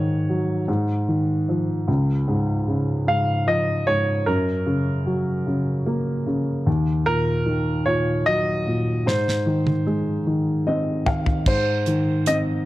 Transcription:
Already playing: upright piano G#2 D#3, grand piano C#5
0.29 upright piano F#3
0.68 upright piano G#2
1.08 upright piano D#3
1.49 upright piano F3
1.88 upright piano C#2
2.28 upright piano G#2
2.68 upright piano C#3
3.07 upright piano G#2, grand piano F5
3.47 upright piano F3, grand piano D#5
3.87 upright piano G#2, grand piano C#5
4.26 upright piano F#2, grand piano A#4
4.66 upright piano C#3
5.06 upright piano F#3
5.47 upright piano C#3
5.86 upright piano A#3
6.27 upright piano C#3
6.66 upright piano D#2
7.06 upright piano A#2, grand piano A#4
7.46 upright piano D#3
7.86 upright piano A#2, grand piano C#5
8.26 upright piano F#3, grand piano D#5
8.67 upright piano A#2
9.06 upright piano G#2, grand piano C5, snare
9.28 snare
9.46 upright piano D#3
9.67 high tom
9.86 upright piano G#3
10.27 upright piano D#3
10.67 upright piano C4 D#5
11.06 upright piano D#3 F5, floor tom
11.26 floor tom
11.46 upright piano G#2, grand piano C5, kick, crash
11.86 upright piano D#3, closed hi-hat
12.26 upright piano C4, grand piano D#5, closed hi-hat

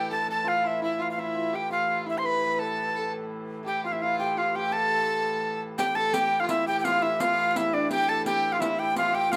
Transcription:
Already playing: hurdy-gurdy A2 E3, hammered dulcimer D4 E4 G4 A4 B4, fiddle G4, recorder G5
0.11 fiddle A4, hammered dulcimer A4, recorder A5
0.28 hammered dulcimer A4, fiddle A4, recorder A5
0.44 hammered dulcimer F4, fiddle F4
0.48 recorder F5
0.64 fiddle E4, recorder E5
0.81 fiddle E4, hammered dulcimer E4, recorder E5
0.99 hammered dulcimer F4, fiddle F4, recorder F5
1.11 recorder F5
1.18 hammered dulcimer E4, fiddle E4, recorder E5
1.35 hammered dulcimer F4
1.53 hurdy-gurdy A2 E3, hammered dulcimer G4, fiddle G4, recorder G5
1.70 hammered dulcimer F4, fiddle F4, recorder F5
1.89 fiddle F4
2.06 fiddle E4, hammered dulcimer E4, recorder E5
2.18 fiddle C5, recorder C6
2.24 fiddle B4, hammered dulcimer B4, recorder B5
2.43 hammered dulcimer B4
2.54 recorder B5
2.59 hammered dulcimer A4, fiddle A4, recorder A5
2.94 fiddle A4
3.63 fiddle G4, hammered dulcimer G4 A4
3.68 recorder G5
3.84 fiddle F4, hammered dulcimer F4, recorder F5
3.91 fiddle E4, hammered dulcimer E4, recorder E5
4.01 fiddle F4, hammered dulcimer F4, recorder F5
4.19 hammered dulcimer G4, recorder G5
4.36 fiddle F4, hammered dulcimer F4, recorder F5
4.54 fiddle G4, hammered dulcimer G4, recorder G5
4.71 hammered dulcimer A4, fiddle A4, recorder A5
5.78 hurdy-gurdy A2 E3, hammered dulcimer G4, fiddle G4, recorder G5, riq
5.95 fiddle A4, hammered dulcimer A4, recorder A5
6.14 fiddle G4, hammered dulcimer G4, recorder G5, riq
6.40 hammered dulcimer F4, fiddle F4, recorder F5
6.49 hammered dulcimer E4, fiddle E4, recorder E5, riq
6.67 hammered dulcimer G4, fiddle G4, recorder G5
6.80 recorder G5
6.84 hammered dulcimer F4, fiddle F4, recorder F5, riq
7.02 hammered dulcimer E4, fiddle E4, recorder E5
7.20 hammered dulcimer F4, fiddle F4, recorder F5, riq
7.51 recorder F5
7.55 hammered dulcimer E4, fiddle E4, recorder E5, riq
7.73 fiddle D4, hammered dulcimer D4, recorder D5
7.90 fiddle G4, hammered dulcimer G4, recorder G5, riq
8.08 hammered dulcimer A4, fiddle A4, recorder A5
8.26 hammered dulcimer G4, fiddle G4, recorder G5, riq
8.51 hammered dulcimer F4, fiddle F4 G4, recorder F5
8.60 hammered dulcimer E4, fiddle E4, recorder E5, riq
8.79 hammered dulcimer G4, recorder G5
8.96 hammered dulcimer F4, fiddle F4, recorder F5, riq
9.12 hammered dulcimer G4, fiddle G4, recorder G5
9.29 hammered dulcimer F4, fiddle F4, recorder F5, riq

